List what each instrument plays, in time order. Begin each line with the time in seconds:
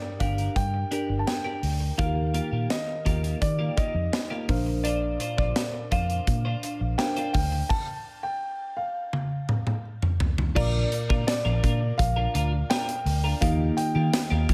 Already playing: fm electric piano G2 D4 G4 A#4 G5, grand piano D5
0.02 muted clean electric guitar stroke
0.20 fingered electric bass G1, clean electric guitar D4 G4 A#4, grand piano F5, kick, closed hi-hat
0.38 clean electric guitar D4 G4 A#4, closed hi-hat
0.56 fingered electric bass G2, grand piano G5, muted clean electric guitar stroke, kick, closed hi-hat
0.74 muted clean electric guitar stroke
0.91 clean electric guitar D4 G4 A#4, fm electric piano D4 G4 A#4 G5, closed hi-hat
1.09 fingered electric bass G1, muted clean electric guitar stroke
1.19 grand piano A5
1.27 grand piano G5, muted clean electric guitar stroke, snare, closed hi-hat
1.45 clean electric guitar D4 G4 A#4
1.62 fingered electric bass D2, muted clean electric guitar stroke, open hi-hat
1.80 muted clean electric guitar stroke
1.98 fingered electric bass D#2, fm electric piano D#3 D#4 F#4 A#4 F5, clean electric guitar A#3 F4 G4, grand piano F5, kick, closed hi-hat
2.05 fm electric piano G4
2.16 muted clean electric guitar stroke
2.34 clean electric guitar A#3 F4 G4, closed hi-hat
2.52 fingered electric bass A#2, clean electric guitar A#3 F4 G4
2.69 grand piano D#5, muted clean electric guitar stroke, snare, closed hi-hat
2.87 muted clean electric guitar stroke
3.05 fingered electric bass D#2, clean electric guitar A#3 F4 G4, kick, closed hi-hat
3.23 clean electric guitar A#3 F4 G4, closed hi-hat
3.41 fingered electric bass D#3, grand piano D5, muted clean electric guitar stroke, kick, closed hi-hat
3.59 clean electric guitar A#3 F4 G4
3.77 clean electric guitar A#3 F4 G4, grand piano D#5, kick, closed hi-hat
3.94 fingered electric bass F2, muted clean electric guitar stroke
4.13 muted clean electric guitar stroke, snare, closed hi-hat
4.30 clean electric guitar A#3 F4 G4
4.48 fingered electric bass A#1, fm electric piano A#2 D4 A#4 C5 F5, muted clean electric guitar stroke, kick, open hi-hat
4.66 muted clean electric guitar stroke
4.84 clean electric guitar D4 F4 C5, grand piano D5, closed hi-hat
5.02 muted clean electric guitar stroke
5.20 clean electric guitar D4 F4 C5, closed hi-hat
5.37 fingered electric bass A#1, clean electric guitar D4 F4 C5, grand piano D5, kick
5.55 muted clean electric guitar stroke, snare, closed hi-hat
5.74 muted clean electric guitar stroke
5.91 fingered electric bass F2, clean electric guitar D4 F4 C5, grand piano F5, kick, closed hi-hat
6.09 clean electric guitar D4 F4 C5, closed hi-hat
6.27 fingered electric bass A#2, kick, closed hi-hat
6.45 clean electric guitar D4 F4 C5
6.63 clean electric guitar D4 F4 C5, closed hi-hat
6.81 fingered electric bass A#1, muted clean electric guitar stroke
6.98 fm electric piano D4 A#4 C5 F5, grand piano G5, muted clean electric guitar stroke, snare, closed hi-hat
7.17 clean electric guitar D4 F4 C5, closed hi-hat
7.33 fingered electric bass D2, grand piano G5, muted clean electric guitar stroke, kick, open hi-hat
7.52 muted clean electric guitar stroke
7.69 grand piano A5, kick, crash
8.23 grand piano G5
8.77 grand piano F5
9.13 high tom
9.49 mid tom
9.67 mid tom
10.02 mid tom
10.20 floor tom
10.38 floor tom
10.55 fingered electric bass A#1, fm electric piano A#2 F4 A#4 D5, clean electric guitar D4 F4 A#4, grand piano D5, kick, crash
10.92 muted clean electric guitar stroke, closed hi-hat
11.09 fingered electric bass A#2, clean electric guitar D4 F4 A#4, kick
11.27 grand piano D5, snare, closed hi-hat, tambourine
11.45 fingered electric bass A#1, clean electric guitar D4 F4 A#4
11.63 fingered electric bass A#2, clean electric guitar D4 F4 A#4, kick, closed hi-hat
11.81 muted clean electric guitar stroke
11.98 fingered electric bass A#1, grand piano F5, muted clean electric guitar stroke, kick, closed hi-hat
12.16 clean electric guitar D4 F4 A#4
12.34 fingered electric bass D2, clean electric guitar D4 F4 A#4, closed hi-hat
12.53 muted clean electric guitar stroke
12.70 clean electric guitar D4 F4 A#4, grand piano G5, snare, closed hi-hat, tambourine
12.88 muted clean electric guitar stroke, closed hi-hat
13.05 fingered electric bass D2, muted clean electric guitar stroke, open hi-hat
13.24 clean electric guitar D4 F4 A#4
13.41 fingered electric bass D#2, fm electric piano D#3 A#3 D#4 F4 G4 D#5, clean electric guitar A#3 F4 G4, grand piano F5, kick, closed hi-hat
13.77 grand piano G5, muted clean electric guitar stroke, closed hi-hat
13.95 fingered electric bass D#3, clean electric guitar A#3 F4 G4
14.13 muted clean electric guitar stroke, snare, closed hi-hat, tambourine
14.30 fingered electric bass D#2, clean electric guitar A#3 F4 G4
14.48 fingered electric bass D#3, clean electric guitar A#3 F4 G4, kick, closed hi-hat